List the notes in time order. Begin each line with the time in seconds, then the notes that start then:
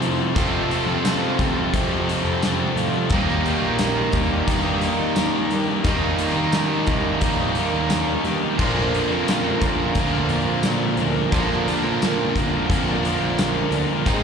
Already playing: F2 C3 F3 A3 C4
0.00 A2 F3 C4 F4 A4, closed hi-hat
0.20 C4 F4 A4
0.35 F2 C3 F3 A3 C4 F4 A4, kick, closed hi-hat
0.39 F3
0.70 F3 C4 F4 A4, closed hi-hat
0.86 F3 C4 F4 A4
1.03 F3 C4 F4 A4, snare, closed hi-hat, tambourine
1.39 D2 F3 C4 F4 A4, kick, closed hi-hat
1.57 C4 F4 A4
1.73 C2 F2 C3 F3, kick, closed hi-hat
1.91 C4 F4 A4
2.09 F3 C4 F4 A4, closed hi-hat
2.24 F2 C4 F4 A4
2.42 F3 C4 F4 A4, snare, closed hi-hat, tambourine
2.60 C4 F4 A4
2.76 A2 F3 C4 F4, closed hi-hat
2.80 A4
2.96 C4 F4 A4
3.10 D#2 D#3 G3 A#3 A#4, kick, closed hi-hat
3.14 A#3 D#4 G4
3.29 snare
3.45 G3 A#3 D#4 G4, closed hi-hat
3.62 A#1 A#3 D#4 G4 A#4
3.78 D#3 G3 A#3 D#4 G4 A#4, snare, closed hi-hat, tambourine
4.12 D#2 G3 A#3 D#4 G4, kick, closed hi-hat
4.17 A#4
4.30 A#3 D#4 G4
4.47 G2 D#3 A#3, kick, closed hi-hat
4.51 D#4
4.64 A#3 D#4 G4 A#4
4.81 G3 A#3 D#4 G4, closed hi-hat
4.85 A#4
5.00 D#3 A#3 D#4 A#4
5.16 D#3 G3 A#3 D#4 G4, snare, closed hi-hat, tambourine
5.33 A#3 D#4 G4
5.50 G2 G3 A#3 D#4 G4 A#4, closed hi-hat
5.68 A#3 D#4 G4 A#4
5.84 D#2 D#3 G3 A#3 D#4 A#4, kick, closed hi-hat
5.89 G4
6.18 G3 A#3 D#4, closed hi-hat
6.23 G4
6.36 D#3 A#3 D#4 G4 A#4
6.52 D#3 G3 A#3 D#4 A#4, snare, closed hi-hat, tambourine
6.57 G4
6.87 C2 G3 A#3 D#4 G4, kick, closed hi-hat
6.91 A#4
7.04 A#3 D#4 G4
7.21 A#1 D#3 A#3, kick, closed hi-hat
7.26 D#4
7.39 A#3 D#4 G4 A#4
7.55 G3 A#4, closed hi-hat
7.59 A#3 D#4 G4
7.74 D#2 A#3 D#4 A#4
7.90 D#3 G3 A#3 D#4 G4, snare, closed hi-hat, tambourine
8.07 A#3 D#4 G4
8.24 G2 G3 A#3 D#4 G4, closed hi-hat
8.29 A#4
8.42 A#3 D#4 G4 A#4
8.59 A#1 A#2 D3 F3 A#3 D4 F4 A#4, kick, crash
8.79 snare
8.94 F3 A#3 D4 A#4, closed hi-hat
9.09 F2 D4 A#4
9.14 F3 A#3
9.28 A#2 D3 F3 A#3 D4, snare, closed hi-hat, tambourine
9.32 A#4
9.61 A#1 F3 A#3 D4, kick, closed hi-hat
9.66 A#4
9.80 F3 A#3 D4 A#4
9.95 D2 A#2 F3 A#3, kick, closed hi-hat
10.13 F3 A#3 D4 A#4
10.29 F3 A#3 D4, closed hi-hat
10.33 A#4
10.45 A#2 A#3 D4 A#4
10.50 F3
10.63 A#2 D3 F3 A#3 D4 A#4, snare, closed hi-hat, tambourine
10.81 F3 A#3 D4 A#4
10.97 D2 F3 A#3 D4, closed hi-hat
11.01 A#4
11.15 F3 A#3 D4 A#4
11.32 A#1 A#2 D3 F3 A#3 D4 F4 A#4, kick, closed hi-hat
11.51 snare
11.67 F3 A#3 D4 A#4, closed hi-hat
11.84 A#2 A#3 D4 A#4
11.88 F3
12.02 A#2 D3 F3 A#3 D4 A#4, snare, closed hi-hat, tambourine
12.35 G1 F3 A#3 D4 A#4, kick, closed hi-hat
12.54 F3 A#3 D4 A#4
12.70 F2 A#2 F3 A#3, kick, closed hi-hat
12.89 F3 A#3 D4 A#4
13.05 F3 A#3 D4 A#4, closed hi-hat
13.20 A#1 F3 A#3 D4 A#4
13.39 A#2 D3 F3 A#3 D4 A#4, snare, closed hi-hat, tambourine
13.56 F3 A#3 D4 A#4
13.70 D2 F3 D4 A#4, closed hi-hat
13.75 A#3 D4 A#4
13.91 F3 A#3 D4 A#4
14.05 G#1 G#2 D#3 G#3 C4 D#4 G#4, kick, closed hi-hat